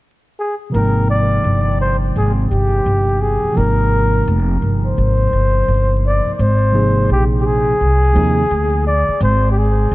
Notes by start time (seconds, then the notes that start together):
0.39 G#4
0.70 C3 F3 A#3 A#4
0.74 G#1 D#4 G5
1.10 D5
1.44 G1
1.81 C5
2.16 G#1 G#4
2.51 G1 G4
2.86 G1
3.21 G#4
3.43 muted upright bass stroke
3.52 C3 F3
3.56 G#1 A#3 D#4 A#4
4.27 F1
4.62 G1
4.85 C5
4.98 G#1
5.33 G1
5.68 G1
6.06 D5
6.26 muted upright bass stroke
6.35 D5
6.39 G#1 C5
6.72 C3 F3 A#3 D#4 G#4
7.09 A#1 G4
7.41 G4
7.46 G#4
7.81 C2
8.13 D#2 C3 F3 A#3 D#4 G#4
8.51 D2
8.87 D5
9.08 muted upright bass stroke
9.21 G#1 C5
9.52 G4
9.58 G#4
9.91 A#1